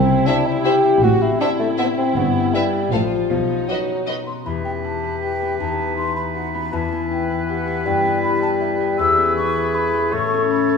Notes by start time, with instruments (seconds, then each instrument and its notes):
Already playing: double bass section C2, cello section C2, harp C3, bassoon C4, viola section E4
0.09 harp C4
0.27 bassoon D4, harp E4, violin section E4 C5 E5
0.46 bassoon E4, harp G4
0.65 harp E4, violin section E4 C5 E5, bassoon G4
0.84 harp C4
1.03 double bass section A1, harp A2, cello section A2, viola section F#4, bassoon F#4
1.22 harp C4, bassoon E4
1.41 bassoon D4, harp E4, violin section E4 C5 E5, viola section E4
1.60 bassoon A3, harp A4
1.78 bassoon B3, harp E4, violin section E4 C5 E5
1.98 harp C4, bassoon C4
2.16 double bass section G1, harp G2, cello section G2, bassoon B3
2.35 harp B3
2.54 bassoon G3, harp E4, violin section E4 B4 E5
2.73 harp B4
2.91 double bass section A1, cello section A2, harp A2, bassoon F3, viola section F4, violin section A4 C5 F5
3.11 harp F4 A4
3.30 double bass section B1, harp B2, cello section B2, bassoon F3, viola section D#4
3.50 harp B3
3.69 bassoon F#3, harp D#4, violin section F#4 B4 D#5
3.88 harp F#4
4.07 harp D#4, violin section F#4 B4 D#5
4.26 harp B3, flute C6
4.46 harp E2, bassoon E3, clarinet G4, oboe B4, flute B5
4.65 harp B3, flute G5
4.84 harp E4, flute A5
5.03 harp B4
5.21 harp G4, flute G5
5.42 harp B3
5.59 harp E2, clarinet D#4, flute A5
5.79 harp B3
5.96 harp D#4, flute C6
6.16 harp B4, flute B5
6.35 harp F#4, flute F#5
6.53 harp B3, flute B5
6.72 harp E2, bassoon E3, clarinet E4, oboe B4, flute A5
6.92 harp B3
7.11 harp E4, flute G5
7.30 harp B4
7.49 harp G4, flute F#5
7.67 harp B3
7.86 harp G2, bassoon G3, flute G5
8.05 harp B3
8.23 harp E4, flute B5
8.42 harp B4, flute A5
8.61 harp G4, flute E5
8.80 harp B3
8.99 harp E2, bassoon E3, clarinet G#4, oboe B4, flute E6
9.18 harp B3
9.37 harp E4, flute C#6
9.56 harp B4
9.75 harp G#4, flute B5
9.93 harp B3
10.12 harp A2, bassoon A3, clarinet A4, oboe C#5, flute C#6
10.32 harp C#4
10.50 harp E4, flute B5
10.69 harp C#5